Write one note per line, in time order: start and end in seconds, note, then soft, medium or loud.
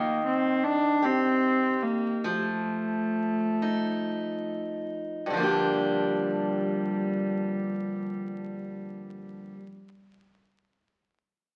0.00 2.27 D#3 medium
0.00 0.24 A#3 medium
0.00 1.02 D#4 medium
0.26 0.65 C4 medium
0.64 1.06 D4 medium
1.02 1.84 C4 medium
1.02 2.33 G4 medium
1.82 2.26 A#3 medium
2.24 5.33 F3 medium
2.24 4.70 A3 medium
3.62 5.40 D#4 soft
5.26 9.52 G2 soft
5.26 9.51 G3 soft
5.30 9.56 D3 soft
5.30 9.60 F3 soft
5.37 9.63 A#3 medium
5.37 9.66 D4 medium
5.43 9.69 G4 medium